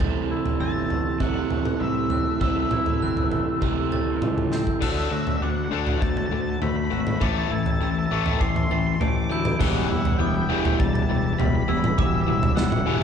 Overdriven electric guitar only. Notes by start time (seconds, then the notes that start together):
0.00 C3 E3 A3 C4
1.19 C3 E3 A3 C4
2.40 C3 E3 A3 C4
3.61 C3 E3 A3 C4
9.60 E3 G3 B3
9.90 E3 G3
10.19 E3 G3
10.49 E3 G3 B3
10.79 E3 G3
11.09 E3 G3
11.40 E3 G3
11.69 E3 G3
11.99 E3 G3
12.28 E3 G3
12.59 E3 G3
12.87 E3 G3 B3